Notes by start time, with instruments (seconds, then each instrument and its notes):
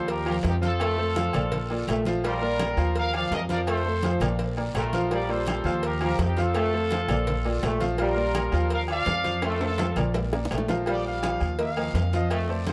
Already playing: upright bass D#2, grand piano F3 F4 F5
0.08 horn section G4 A#4, cowbell, high conga, long guiro
0.26 grand piano F3 F4 F5, trombone section F3, horn section G4 A#4, high conga, low agogo, claves
0.43 upright bass F2, horn section D#4, cowbell, high conga, low timbale, low agogo, short guiro
0.48 horn section G4
0.61 grand piano F3 F4 F5, horn section F4 A4, cowbell, high conga, short guiro
0.80 trombone section A3, cowbell, high conga, low agogo, long guiro, claves
0.97 grand piano A3 A4 C5, high conga
1.16 trombone section F3, grand piano F3 F4 F5, cowbell, high conga, low timbale, low agogo, short guiro
1.33 upright bass A#1, grand piano A#3 A4 D5, cowbell, high conga, low conga, low agogo, short guiro, claves
1.52 cowbell, high conga, low conga, long guiro
1.70 grand piano A#3 F4 D5, high conga, low agogo
1.88 upright bass A#1, trombone section A3, cowbell, high conga, low timbale, low agogo, short guiro, claves
2.05 grand piano F3 F4 F5, cowbell, high conga, short guiro
2.24 grand piano F3 F4 F5, trombone section G3, horn section F4 A#4, cowbell, high conga, low agogo, long guiro
2.42 grand piano A#3 A#4 D5, high conga
2.59 cowbell, high conga, low timbale, low agogo, short guiro, claves
2.77 upright bass D#2, grand piano F3 F4 F5, low agogo, short guiro
2.96 horn section A#4 F5, cowbell, high conga, long guiro
3.14 trombone section F3, grand piano F3 F4 F5, horn section D5 F5, high conga, low agogo, claves
3.31 upright bass F2, horn section A#4 D#5, cowbell, high conga, low timbale, low agogo, short guiro
3.49 grand piano F3 F4 F5, horn section A#4 D5, cowbell, high conga, short guiro
3.67 trombone section A3, horn section A4 C5, cowbell, high conga, low agogo, long guiro, claves
3.85 grand piano A3 A4 C5, high conga
4.03 grand piano F3 F4 F5, trombone section F3, cowbell, high conga, low timbale, low agogo, short guiro
4.20 upright bass A#1, grand piano A#3 A#4 D5, cowbell, high conga, low conga, low agogo, short guiro, claves
4.39 cowbell, high conga, long guiro
4.57 grand piano A#3 A#4 D5, high conga, low agogo
4.75 upright bass A#1, trombone section A3, horn section F4 A#4, cowbell, high conga, low timbale, low agogo, short guiro, claves
4.93 grand piano F3 F4 F5, cowbell, high conga, short guiro
5.11 grand piano F3 F4 F5, trombone section G3, horn section A#4 D5, cowbell, high conga, low agogo, long guiro
5.29 grand piano A#3 F4 D5, horn section A4 C5, high conga
5.46 cowbell, high conga, low timbale, low agogo, short guiro, claves
5.64 upright bass D#2, grand piano F3 F4 F5, low agogo, short guiro
5.83 horn section G4 A#4, cowbell, high conga, long guiro
6.01 grand piano F3 F4 F5, trombone section F3, horn section G4 A#4, high conga, low agogo, claves
6.19 upright bass F2, horn section D#4 G4, cowbell, high conga, low timbale, low agogo, short guiro
6.37 grand piano F3 F4 F5, horn section F4, cowbell, high conga, short guiro
6.41 horn section A4
6.54 trombone section A3, cowbell, high conga, low agogo, long guiro, claves
6.73 grand piano A3 A4 C5, high conga
6.91 grand piano F3 F4 F5, trombone section F3, cowbell, high conga, low timbale, low agogo, short guiro
7.08 upright bass A#1, grand piano A#3 A4 D5, cowbell, high conga, low conga, low agogo, short guiro, claves
7.27 cowbell, high conga, low conga, long guiro
7.45 grand piano A#3 F4 D5, high conga, low agogo
7.63 upright bass A#1, trombone section A3, cowbell, high conga, low timbale, low agogo, short guiro, claves
7.80 grand piano F3 F4 F5, cowbell, high conga, short guiro
7.98 grand piano F3 F4 F5, trombone section G3, horn section F4 A#4, cowbell, high conga, low agogo, long guiro
8.16 grand piano A#3 A#4 D5, high conga
8.35 cowbell, high conga, low timbale, low agogo, short guiro, claves
8.52 upright bass D#2, grand piano F3 F4 F5, low agogo, short guiro
8.70 horn section A#4 F5, cowbell, high conga, long guiro
8.88 trombone section F3, grand piano F3 F4 F5, horn section D5 F5, high conga, low agogo, claves
9.06 upright bass F2, cowbell, high conga, low timbale, low agogo, short guiro
9.24 grand piano F3 F4 F5, cowbell, high conga, short guiro
9.42 trombone section A3, horn section F4 A4, cowbell, high conga, high timbale, low agogo, long guiro, claves
9.60 grand piano A3 A4 C5, horn section F4 A4, high conga, high timbale
9.78 grand piano F3 F4 F5, trombone section F3, cowbell, high conga, low timbale, low agogo, short guiro
9.96 upright bass A#1, grand piano A#3 A#4 D5, cowbell, high conga, low conga, low agogo, short guiro, claves
10.14 cowbell, high conga, low timbale, long guiro
10.33 grand piano A#3 A#4 D5, high bongo, high conga, low agogo
10.45 low bongo
10.51 upright bass A#1, trombone section A3, cowbell, high conga, low timbale, low agogo, short guiro, claves
10.58 low bongo
10.68 grand piano F3 F4 F5, trumpet section A#4, cowbell, low bongo, high conga, low timbale, short guiro
10.86 grand piano F3 F4 F5, trombone section G3, trumpet section D5, cowbell, high conga, low agogo, long guiro
11.05 trumpet section F5, high conga
11.22 grand piano F3 F4 F5, cowbell, high conga, low timbale, low agogo, short guiro, claves
11.40 upright bass D#2, low agogo, short guiro
11.59 grand piano A#3 A#4 D#5, trumpet section F5, cowbell, high conga, long guiro
11.76 trombone section F3, grand piano A#3 A#4 D#5, high conga, low agogo, claves
11.94 upright bass F2, cowbell, high conga, low timbale, low agogo, short guiro
12.13 grand piano F3 F4 F5, trumpet section D#5, cowbell, high conga, short guiro
12.30 trombone section A3, cowbell, high conga, low agogo, long guiro, claves
12.49 grand piano A3 A4 C5, trumpet section D5, high conga
12.67 trombone section F3, trumpet section C5, cowbell, high conga, low timbale, low agogo, short guiro